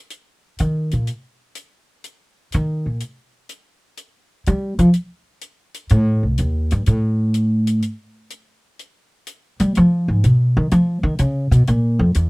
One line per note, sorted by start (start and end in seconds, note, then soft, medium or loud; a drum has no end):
0.10 closed hi-hat soft
0.58 0.92 D#3 medium
0.58 closed hi-hat soft
0.91 1.08 A#2 medium
0.91 closed hi-hat soft
1.07 closed hi-hat soft
1.55 closed hi-hat soft
2.04 closed hi-hat soft
2.52 2.85 D#3 medium
2.52 closed hi-hat soft
2.86 3.00 A#2 soft
3.00 closed hi-hat soft
3.49 closed hi-hat soft
3.97 closed hi-hat soft
4.46 4.78 G3 medium
4.46 closed hi-hat soft
4.79 4.88 F3 medium
4.79 closed hi-hat soft
4.93 closed hi-hat soft
5.41 closed hi-hat soft
5.74 closed hi-hat soft
5.89 6.22 A2 medium
5.89 closed hi-hat soft
6.23 6.37 C2 soft
6.38 6.70 D#2 medium
6.38 closed hi-hat medium
6.71 6.86 G2 medium
6.71 closed hi-hat soft
6.86 7.79 A2 medium
6.86 closed hi-hat soft
7.34 closed hi-hat soft
7.67 closed hi-hat soft
7.82 closed hi-hat soft
8.30 closed hi-hat soft
8.79 closed hi-hat soft
9.27 closed hi-hat soft
9.60 9.74 G3 medium
9.60 closed hi-hat soft
9.75 10.08 F3 loud
9.75 closed hi-hat soft
10.08 10.23 G#2 medium
10.24 10.55 B2 medium
10.24 closed hi-hat medium
10.57 10.71 D#3 loud
10.71 11.03 F3 loud
10.71 closed hi-hat soft
11.03 11.18 D#3 medium
11.19 11.51 C#3 medium
11.19 closed hi-hat soft
11.51 11.66 B2 medium
11.51 closed hi-hat soft
11.67 11.99 A#2 loud
11.67 closed hi-hat soft
11.99 12.14 F2 medium
12.14 12.30 E2 medium
12.14 closed hi-hat medium